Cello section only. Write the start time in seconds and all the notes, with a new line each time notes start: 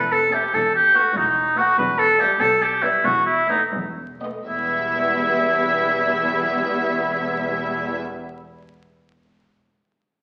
Already playing: E2
0.54 E2
1.15 E2
1.78 E2
2.40 B2
3.04 E2
3.73 E2
4.46 E2